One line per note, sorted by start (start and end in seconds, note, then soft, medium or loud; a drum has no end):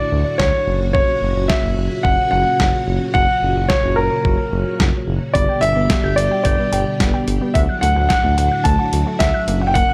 0.00 0.65 A2 medium
0.00 0.65 D3 medium
0.00 5.31 F#3 medium
0.00 0.63 D4 medium
0.00 5.31 F#4 medium
0.00 0.41 D5 medium
0.12 0.24 D2 loud
0.38 0.51 D2 loud
0.38 0.77 C#5 medium
0.38 kick loud
0.38 snare loud
0.67 1.02 F#1 loud
0.67 5.31 A#2 medium
0.67 5.31 C#3 medium
0.67 5.31 C#4 medium
0.93 1.51 C#5 medium
0.93 kick loud
1.22 1.34 F#1 loud
1.36 1.48 F#1 loud
1.48 2.06 E5 medium
1.48 kick loud
1.48 snare loud
1.63 1.75 F#1 medium
1.77 1.89 F#1 loud
2.03 2.16 F#1 loud
2.03 2.29 F#5 medium
2.03 kick loud
2.31 2.44 F#1 loud
2.31 2.83 F#5 medium
2.60 2.71 F#1 loud
2.60 kick loud
2.60 snare loud
2.87 2.99 F#1 medium
3.14 3.26 F#1 loud
3.14 3.71 F#5 loud
3.14 kick loud
3.42 3.54 F#1 loud
3.56 3.68 F#1 loud
3.69 3.98 C#5 medium
3.69 kick loud
3.69 snare loud
3.84 3.95 F#1 loud
3.96 4.09 F#1 medium
3.96 4.75 A#4 medium
4.25 4.37 F#1 loud
4.25 kick loud
4.52 4.64 F#1 loud
4.80 4.92 F#1 loud
4.80 kick loud
4.80 snare loud
5.08 5.19 F#1 loud
5.34 5.47 G1 loud
5.34 7.53 B2 medium
5.34 7.53 D3 medium
5.34 7.53 G3 medium
5.34 5.45 B3 loud
5.34 7.53 D4 medium
5.34 7.53 G4 medium
5.34 5.60 D5 medium
5.34 kick loud
5.34 closed hi-hat medium
5.49 5.59 G5 medium
5.61 5.74 G1 loud
5.61 6.13 E5 loud
5.61 closed hi-hat medium
5.76 5.88 G1 medium
5.76 5.87 B3 medium
5.90 kick loud
5.90 snare loud
5.90 closed hi-hat medium
6.04 6.15 G1 medium
6.04 6.14 G6 medium
6.16 6.29 G1 loud
6.16 6.42 D5 medium
6.16 closed hi-hat medium
6.31 6.42 G5 medium
6.44 6.57 G1 loud
6.44 7.23 D5 medium
6.44 6.55 G6 loud
6.44 kick loud
6.44 closed hi-hat medium
6.59 6.69 B3 medium
6.72 6.84 G1 loud
6.72 6.83 G5 medium
6.72 closed hi-hat medium
7.00 7.12 G1 loud
7.00 7.10 B3 medium
7.00 kick loud
7.00 snare loud
7.00 closed hi-hat medium
7.14 7.24 G5 medium
7.28 7.39 G1 loud
7.28 closed hi-hat medium
7.41 7.52 B3 medium
7.54 7.67 D2 loud
7.54 9.46 A2 medium
7.54 9.46 D3 medium
7.54 9.94 F#3 medium
7.54 9.46 D4 medium
7.54 9.94 F#4 medium
7.54 7.60 E5 medium
7.54 7.66 F#5 loud
7.54 kick loud
7.54 closed hi-hat medium
7.69 7.79 F#6 medium
7.81 7.94 D2 medium
7.81 7.93 A3 medium
7.81 8.07 F#5 medium
7.81 closed hi-hat medium
7.96 8.08 D2 loud
7.96 8.07 F#5 medium
8.09 8.61 F#5 medium
8.09 8.21 F#6 loud
8.09 kick loud
8.09 snare loud
8.09 closed hi-hat medium
8.24 8.36 D2 loud
8.24 8.34 A3 medium
8.38 8.49 D2 loud
8.38 8.48 F#5 medium
8.38 closed hi-hat medium
8.52 8.62 F#6 medium
8.64 8.77 D2 loud
8.64 8.76 A3 medium
8.64 9.21 A5 medium
8.64 kick loud
8.64 closed hi-hat medium
8.79 8.89 F#5 medium
8.93 9.04 D2 loud
8.93 closed hi-hat medium
9.07 9.17 A3 medium
9.19 9.32 D2 loud
9.19 9.58 E5 medium
9.19 9.31 F#5 loud
9.19 kick loud
9.19 snare loud
9.19 closed hi-hat medium
9.34 9.44 F#6 medium
9.48 9.82 F#1 loud
9.48 9.94 A#2 medium
9.48 9.94 C#3 medium
9.48 9.58 A#3 medium
9.48 9.94 C#4 medium
9.48 closed hi-hat medium
9.62 9.72 F#5 medium
9.67 9.75 G5 medium
9.74 9.86 A#3 medium
9.74 9.94 F#5 medium
9.74 kick loud
9.74 closed hi-hat medium
9.89 9.94 F#5 medium